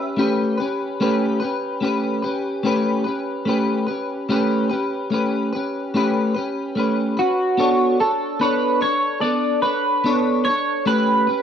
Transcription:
0.00 0.17 C#4 soft
0.00 0.18 G4 soft
0.00 0.18 B4 medium
0.00 0.55 E5 loud
0.17 0.58 A3 medium
0.17 0.59 C#4 medium
0.17 0.59 G4 medium
0.17 0.56 B4 medium
0.58 1.00 C#4 soft
0.58 1.00 G4 medium
0.58 0.99 B4 medium
1.00 1.41 A3 medium
1.00 1.41 C#4 medium
1.00 1.41 G4 medium
1.00 1.39 B4 loud
1.40 1.82 G4 medium
1.40 1.81 B4 medium
1.44 1.81 C#4 soft
1.81 2.22 A3 medium
1.81 2.23 C#4 medium
1.81 2.23 G4 medium
1.81 2.21 B4 medium
2.22 2.63 C#4 soft
2.22 2.64 G4 medium
2.22 2.64 B4 medium
2.63 3.05 A3 medium
2.63 3.06 C#4 medium
2.63 3.06 G4 medium
2.63 3.03 B4 loud
3.04 3.47 G4 medium
3.04 3.46 B4 medium
3.08 3.46 C#4 soft
3.45 3.87 A3 medium
3.45 3.88 C#4 medium
3.45 3.87 G4 medium
3.45 3.85 B4 medium
3.87 4.29 C#4 soft
3.87 4.29 G4 soft
3.87 4.28 B4 medium
4.29 4.70 A3 medium
4.29 4.70 C#4 medium
4.29 4.70 G4 medium
4.29 4.68 B4 loud
4.69 5.11 C#4 soft
4.69 5.11 G4 medium
4.69 5.11 B4 medium
5.10 5.52 A3 medium
5.10 5.52 C#4 medium
5.10 5.53 G4 medium
5.10 5.51 B4 medium
5.53 5.94 C#4 soft
5.53 5.95 G4 medium
5.53 5.93 B4 medium
5.94 6.35 A3 medium
5.94 6.35 C#4 medium
5.94 6.35 G4 medium
5.94 6.33 B4 medium
6.35 6.76 C#4 soft
6.35 6.76 G4 medium
6.35 6.75 B4 medium
6.75 7.16 A3 medium
6.75 7.17 C#4 medium
6.75 7.18 G4 medium
6.79 7.16 B4 medium
7.17 7.58 C#4 soft
7.17 7.96 F#4 medium
7.17 7.58 B4 medium
7.57 7.99 B3 medium
7.57 7.99 D4 medium
7.57 8.00 A4 medium
7.57 7.98 C#5 medium
8.00 8.40 D4 soft
8.00 8.38 A4 medium
8.00 8.40 A4 soft
8.00 8.40 C#5 soft
8.40 8.81 B3 medium
8.40 8.81 D4 medium
8.40 8.81 A4 medium
8.40 8.82 B4 medium
8.40 8.80 C#5 medium
8.81 9.22 D4 soft
8.81 9.23 A4 soft
8.81 9.22 C#5 medium
8.81 9.20 C#5 medium
9.21 9.63 B3 medium
9.21 9.63 D4 medium
9.21 9.64 A4 medium
9.21 9.62 D5 medium
9.62 10.04 D4 soft
9.62 10.05 A4 soft
9.62 10.41 B4 medium
9.62 10.04 C#5 soft
10.04 10.45 B3 medium
10.04 10.46 D4 medium
10.04 10.46 A4 medium
10.04 10.45 C#5 medium
10.45 10.87 A4 soft
10.45 10.87 C#5 medium
10.45 10.87 C#5 soft
10.50 10.86 D4 soft
10.86 11.27 A3 medium
10.86 11.28 C#4 medium
10.86 11.28 G4 medium
10.86 11.42 B4 medium
10.86 11.26 B4 medium
11.27 11.42 C#4 soft
11.27 11.42 G4 soft
11.27 11.42 B4 medium

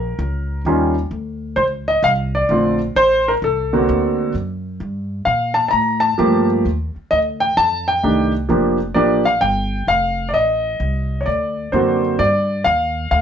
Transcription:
0.00 0.18 A#1 medium
0.00 0.61 A#4 medium
0.19 0.64 C#2 medium
0.65 1.10 D#2 medium
0.65 0.93 D#3 medium
0.65 0.93 G3 soft
0.65 0.94 C#4 medium
0.65 0.94 F4 medium
1.11 1.56 D2 medium
1.56 2.02 C#2 medium
1.56 1.63 C5 medium
1.88 2.05 D#5 medium
2.03 2.48 C2 medium
2.03 2.11 F5 medium
2.35 2.78 D5 medium
2.49 2.94 A#1 medium
2.49 2.78 D3 medium
2.49 2.78 A3 soft
2.49 2.78 C4 soft
2.49 2.78 F4 medium
2.95 3.41 A1 medium
2.95 3.28 C5 loud
3.28 3.33 A#4 medium
3.42 3.87 C2 medium
3.42 4.32 A4 medium
3.73 4.32 D3 medium
3.73 4.32 A#3 soft
3.73 4.32 C4 soft
3.73 4.32 F#4 medium
3.89 4.34 D2 medium
4.34 4.79 F#2 medium
4.80 5.25 G2 medium
5.25 5.72 A#2 medium
5.25 5.57 F5 medium
5.54 5.67 A5 medium
5.68 5.73 A5 medium
5.68 6.00 A#5 medium
5.73 6.18 A2 medium
6.00 6.45 A5 medium
6.18 6.64 G2 medium
6.18 6.65 F3 medium
6.18 6.65 A3 medium
6.18 6.65 A#3 medium
6.18 6.65 G4 medium
6.65 6.94 D#2 medium
6.96 muted upright bass stroke soft
7.11 7.56 D2 medium
7.11 7.18 D#5 medium
7.40 7.56 G5 medium
7.57 8.02 F2 medium
7.57 7.86 A5 medium
7.88 8.31 G5 medium
8.03 8.49 C2 medium
8.03 8.31 D#3 medium
8.03 8.31 A3 soft
8.03 8.31 D4 soft
8.03 8.31 G4 medium
8.49 8.94 F1 medium
8.49 8.77 F3 medium
8.49 8.77 A#3 medium
8.49 8.77 D4 soft
8.49 8.77 G4 medium
8.94 9.41 A1 medium
8.94 9.23 F3 medium
8.94 9.23 A#3 soft
8.94 9.23 D4 medium
8.94 9.23 G4 medium
8.94 9.23 D5 medium
9.25 9.41 F5 medium
9.41 9.87 G1 medium
9.41 9.85 G5 medium
9.87 10.33 F1 medium
9.87 10.27 F5 medium
10.29 10.34 D5 medium
10.34 10.79 A1 medium
10.34 11.24 D#5 medium
10.80 11.25 C2 medium
11.21 11.26 C#5 soft
11.26 11.71 D2 medium
11.26 11.99 D5 medium
11.72 12.18 F#2 medium
11.72 12.19 D3 soft
11.72 12.20 A#3 soft
11.72 12.20 C4 soft
11.72 12.20 F#4 medium
11.72 12.20 C5 medium
12.19 12.64 G2 medium
12.19 12.62 D5 medium
12.64 13.10 D#2 medium
12.64 13.08 F5 medium
13.11 13.22 D2 medium
13.11 13.18 F5 medium

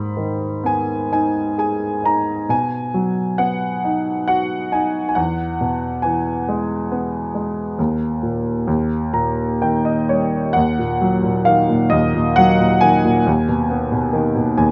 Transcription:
0.00 2.45 G#2 soft
0.00 0.68 B5 medium
0.17 2.00 D#3 soft
0.64 2.45 B3 soft
0.64 1.11 G#5 medium
1.12 2.02 D#4 soft
1.12 1.58 G#5 medium
1.58 2.47 G#4 soft
1.58 2.06 G#5 medium
2.03 2.48 D#4 soft
2.03 2.47 A#5 medium
2.49 5.12 B2 soft
2.49 3.42 G#5 medium
2.94 4.69 F#3 soft
3.38 5.12 B3 soft
3.38 4.26 F#5 medium
3.84 4.70 D#4 soft
4.28 5.14 F#4 soft
4.28 4.74 F#5 medium
4.72 5.15 D#4 soft
4.72 5.07 G#5 medium
5.09 5.16 G#5 soft
5.15 7.74 E2 soft
5.15 6.06 F#5 medium
5.61 7.31 B2 soft
6.02 7.74 E3 soft
6.02 9.56 G#5 medium
6.49 7.33 G#3 soft
6.92 7.76 B3 soft
7.35 7.77 G#3 soft
7.79 8.65 D#2 soft
8.23 8.66 A#2 soft
8.67 10.52 D#2 soft
9.13 10.52 A#2 soft
9.13 9.58 A#5 soft
9.62 10.53 D#3 soft
9.62 9.84 G5 soft
9.85 10.07 D#5 soft
10.09 10.54 G3 soft
10.09 10.52 C#5 soft
10.53 11.90 D#2 soft
10.53 11.48 F#5 medium
10.79 11.22 A#2 soft
11.01 12.36 F#3 soft
11.23 11.68 A#2 soft
11.45 12.81 D#3 soft
11.45 11.88 F5 medium
11.69 12.13 A#2 soft
11.90 13.22 D#2 soft
11.90 12.38 D#5 medium
12.14 12.58 A#2 soft
12.36 13.24 F#3 soft
12.36 12.83 F#5 medium
12.60 13.03 A#2 soft
12.81 13.25 D#3 soft
12.81 14.56 G#5 medium
13.05 13.26 A#2 soft
13.26 14.56 D#2 medium
13.48 13.90 B2 soft
13.70 14.71 B3 soft
13.92 14.34 B2 soft
14.13 14.71 D#3 medium
14.35 14.71 B2 soft
14.58 14.71 D#2 medium
14.58 14.71 G#5 medium

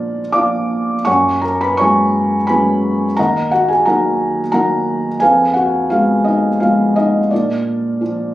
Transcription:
0.00 1.03 A#2 medium
0.00 0.21 F3 soft
0.00 0.21 A#3 soft
0.00 0.37 D4 medium
0.00 1.08 F4 medium
0.00 1.08 A#4 medium
0.00 0.33 D5 medium
0.33 0.93 F3 soft
0.33 1.02 D5 soft
0.33 1.02 F5 soft
0.33 1.08 D6 medium
0.37 0.93 A#3 soft
0.37 0.94 D4 soft
1.05 3.14 F#2 medium
1.05 1.40 C#5 medium
1.05 1.40 F#5 medium
1.05 1.41 G#5 medium
1.05 1.43 C#6 medium
1.42 1.60 A#4 medium
1.42 1.61 A#5 medium
1.61 1.79 B4 medium
1.61 1.77 B5 medium
1.77 2.36 F#3 soft
1.77 2.36 G#3 soft
1.77 2.45 C#5 medium
1.77 2.45 G#5 medium
1.77 2.44 C#6 medium
1.82 2.37 C#4 soft
2.47 3.05 F#3 soft
2.47 3.05 G#3 soft
2.47 3.14 B4 soft
2.47 3.13 G#5 soft
2.47 3.19 B5 medium
2.51 3.05 C#4 soft
3.17 5.18 D#2 medium
3.17 3.50 A#4 medium
3.17 3.50 D#5 medium
3.17 3.50 F#5 medium
3.17 3.52 A#5 medium
3.51 3.69 F#4 medium
3.51 3.67 F#5 medium
3.68 3.85 G#4 medium
3.68 3.84 G#5 medium
3.86 4.40 F#3 soft
3.86 4.41 A#3 soft
3.86 4.41 D#4 soft
3.86 4.50 A#4 medium
3.86 4.50 F#5 medium
3.86 4.50 A#5 medium
4.52 5.08 F#3 soft
4.52 5.08 A#3 soft
4.52 5.08 D#4 medium
4.52 5.18 A#4 soft
4.52 5.18 F#5 medium
4.52 5.17 A#5 medium
5.20 7.29 F2 medium
5.20 5.53 G#4 soft
5.20 5.53 B4 medium
5.20 5.54 F5 medium
5.20 5.53 G#5 medium
5.54 5.88 F#4 medium
5.54 5.87 F#5 medium
5.90 6.47 F3 soft
5.90 6.48 G#3 soft
5.90 6.48 B3 soft
5.90 6.24 F4 medium
5.90 6.26 F5 medium
6.24 6.59 D#4 medium
6.24 6.58 D#5 medium
6.60 7.18 F3 soft
6.60 7.18 G#3 soft
6.60 7.18 B3 soft
6.60 6.95 F4 medium
6.60 6.94 F5 medium
6.96 7.31 D#4 medium
6.96 7.33 D#5 medium
7.31 8.34 A#2 medium
7.31 8.00 D4 soft
7.31 8.34 F4 soft
7.31 8.34 A#4 soft
7.31 8.34 D5 medium
8.01 8.34 F3 soft
8.01 8.34 A#3 soft
8.01 8.34 D4 soft

